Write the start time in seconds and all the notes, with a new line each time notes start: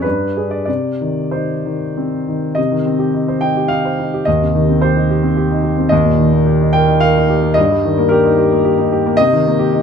0.02 G2 B4
0.37 D4 G#4
0.51 D5
0.66 C3 D5
1.01 D#3
1.31 D#4 C5
1.66 D#3
1.97 C4
2.29 D#3
2.55 C3 D#5
2.71 D#3
2.86 C4
2.99 G4
3.14 D#4
3.28 C5
3.41 D#4 G5
3.57 G4
3.68 D#4 F5
3.85 C5
3.99 D#4
4.14 G4
4.25 D#2 D#5
4.42 C3
4.55 D#3
4.69 C4
4.82 G4 C5
4.96 D#4
5.11 G4
5.23 C4
5.37 G4
5.51 D#4
5.64 G4
5.78 C4
5.89 D#2 D#5
6.05 A#2
6.18 D#3
6.33 A#3
6.46 G4
6.61 D#4
6.73 A#4 G5
6.89 D#4
7.00 A#4 F5
7.17 D#4
7.30 G4
7.43 A#3
7.54 G2 D#5
7.70 G3
7.85 D#3
7.98 A#3
8.09 G4 A#4
8.25 D#4
8.38 G4
8.52 A#3
8.65 G4
8.78 D#4
8.92 G4
9.06 A#3
9.17 C3 D#5
9.33 D#3
9.47 A#3
9.59 G4
9.72 D#4